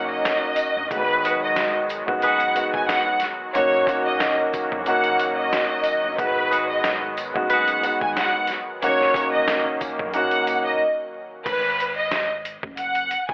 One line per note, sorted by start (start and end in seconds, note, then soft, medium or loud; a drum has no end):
0.00 0.21 F#1 loud
0.00 0.88 D#3 medium
0.00 0.86 F#3 medium
0.00 0.81 A#3 medium
0.00 0.88 A#3 medium
0.00 0.81 C#4 medium
0.00 0.88 C#4 medium
0.00 0.82 D#4 medium
0.00 0.82 F#4 loud
0.00 0.86 F#4 medium
0.10 0.87 D#5 medium
0.25 snare loud
0.25 closed hi-hat loud
0.56 closed hi-hat medium
0.56 tambourine medium
0.76 0.88 G1 medium
0.90 2.04 G#1 loud
0.90 3.52 D#3 medium
0.90 11.42 F#3 medium
0.90 3.52 G#3 medium
0.90 1.82 G#3 medium
0.90 3.52 B3 medium
0.90 1.83 B3 medium
0.90 1.83 D#4 medium
0.90 11.42 F#4 medium
0.90 1.83 F#4 loud
0.90 1.38 B4 loud
0.90 kick loud
0.90 closed hi-hat loud
1.24 1.39 F#4 medium
1.24 1.39 G#4 medium
1.24 1.39 B4 medium
1.24 closed hi-hat medium
1.24 tambourine soft
1.43 1.72 D#5 medium
1.56 snare loud
1.56 closed hi-hat medium
1.89 closed hi-hat medium
1.89 tambourine medium
2.06 2.58 F#1 medium
2.06 2.52 G#3 loud
2.06 2.52 B3 medium
2.06 2.52 D#4 medium
2.06 2.52 F#4 loud
2.06 kick loud
2.22 2.43 F#4 loud
2.22 2.43 G#4 loud
2.22 2.43 B4 loud
2.22 2.71 F#5 medium
2.22 closed hi-hat loud
2.40 closed hi-hat soft
2.55 3.16 G#3 medium
2.55 3.17 B3 medium
2.55 3.17 D#4 medium
2.55 3.17 F#4 loud
2.55 closed hi-hat medium
2.55 tambourine medium
2.74 2.85 G#1 loud
2.74 2.87 G#5 medium
2.74 kick loud
2.88 3.18 F#5 medium
2.88 snare loud
2.88 closed hi-hat loud
3.20 snare soft
3.20 closed hi-hat medium
3.20 tambourine medium
3.54 4.68 F#1 loud
3.54 8.78 D#3 medium
3.54 3.85 A#3 loud
3.54 6.16 A#3 medium
3.54 3.85 C#4 medium
3.54 6.16 C#4 medium
3.54 3.86 D#4 medium
3.54 3.86 F#4 loud
3.54 4.02 C#5 loud
3.54 closed hi-hat loud
3.87 4.79 A#3 medium
3.87 4.79 C#4 medium
3.87 4.79 D#4 medium
3.87 4.80 F#4 loud
3.87 kick medium
3.87 closed hi-hat medium
3.87 tambourine soft
4.05 4.35 D#5 medium
4.20 snare loud
4.20 closed hi-hat medium
4.53 kick medium
4.53 closed hi-hat medium
4.53 tambourine medium
4.72 5.49 F#1 loud
4.72 kick loud
4.86 6.09 A#3 loud
4.86 6.09 C#4 medium
4.86 6.09 D#4 medium
4.86 6.09 F#4 loud
4.86 5.34 F#5 medium
4.86 closed hi-hat loud
5.04 closed hi-hat medium
5.20 closed hi-hat medium
5.20 tambourine medium
5.37 6.14 D#5 medium
5.53 snare loud
5.53 closed hi-hat loud
5.84 closed hi-hat medium
5.84 tambourine medium
6.04 6.15 G1 medium
6.18 7.31 G#1 loud
6.18 7.10 G#3 medium
6.18 8.79 G#3 medium
6.18 8.79 B3 medium
6.18 7.10 B3 medium
6.18 7.10 D#4 medium
6.18 7.11 F#4 loud
6.18 6.66 B4 loud
6.18 kick loud
6.18 closed hi-hat loud
6.51 6.66 F#4 medium
6.51 6.66 G#4 medium
6.51 6.66 B4 loud
6.51 closed hi-hat medium
6.51 tambourine soft
6.69 6.98 D#5 medium
6.84 snare loud
6.84 closed hi-hat medium
7.17 closed hi-hat medium
7.17 tambourine medium
7.34 7.85 F#1 medium
7.34 7.79 G#3 loud
7.34 7.79 B3 medium
7.34 7.80 D#4 medium
7.34 7.80 F#4 loud
7.34 kick loud
7.50 7.71 F#4 loud
7.50 7.71 G#4 medium
7.50 7.71 B4 loud
7.50 7.98 F#5 medium
7.50 closed hi-hat loud
7.68 closed hi-hat soft
7.82 8.44 G#3 medium
7.82 8.44 B3 medium
7.82 8.44 D#4 medium
7.82 8.45 F#4 loud
7.82 closed hi-hat medium
7.82 tambourine medium
8.01 8.13 G#1 medium
8.01 8.15 G#5 medium
8.01 kick loud
8.17 8.46 F#5 medium
8.17 snare loud
8.17 closed hi-hat loud
8.47 snare soft
8.47 closed hi-hat medium
8.47 tambourine medium
8.82 9.95 F#1 loud
8.82 11.43 D#3 medium
8.82 9.13 A#3 loud
8.82 11.43 A#3 medium
8.82 11.43 C#4 medium
8.82 9.13 C#4 medium
8.82 9.13 D#4 medium
8.82 9.13 F#4 loud
8.82 9.30 C#5 loud
8.82 closed hi-hat loud
9.01 snare soft
9.14 10.06 A#3 medium
9.14 10.07 C#4 medium
9.14 10.07 D#4 medium
9.14 10.07 F#4 loud
9.14 kick medium
9.14 closed hi-hat medium
9.14 tambourine soft
9.32 9.62 D#5 medium
9.48 snare loud
9.48 closed hi-hat medium
9.81 kick medium
9.81 closed hi-hat medium
9.81 tambourine medium
9.99 10.76 F#1 loud
9.99 kick loud
10.14 10.80 A#3 medium
10.14 10.80 C#4 medium
10.14 10.80 D#4 medium
10.14 10.81 F#4 loud
10.14 10.62 F#5 medium
10.14 closed hi-hat loud
10.31 closed hi-hat soft
10.47 closed hi-hat medium
10.47 tambourine medium
10.65 10.79 D#5 medium
11.46 12.59 G#1 loud
11.46 11.93 B4 loud
11.46 kick loud
11.46 closed hi-hat medium
11.46 crash medium
11.80 closed hi-hat medium
11.98 12.27 D#5 medium
12.11 snare loud
12.11 closed hi-hat medium
12.45 closed hi-hat medium
12.63 13.13 F#1 medium
12.63 kick loud
12.77 13.26 F#5 medium
12.77 closed hi-hat medium
12.95 closed hi-hat soft
13.11 closed hi-hat medium
13.29 13.34 G#1 medium
13.29 13.34 G#5 medium
13.29 kick medium